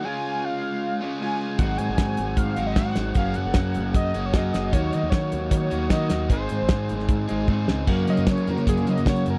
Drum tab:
CC |----------------|----------------|----------------|----------------|
HH |----------------|x-x-x-x-x-x-x-x-|x-x-x-x-x-x-x-x-|x-x-x-x-x-x-x-x-|
SD |----------------|----o-------o-o-|----o-------o-o-|----o-------o-o-|
BD |----------------|o---o---o---o---|o---o---o---o---|o---o---o---o---|

CC |----------------|x---------------|
HH |x-x-x-x-x-x-----|--xxxxxxxxxxxxx-|
SD |----o--o------o-|----o-------o---|
BD |o---o---o---o---|o---o---o---o---|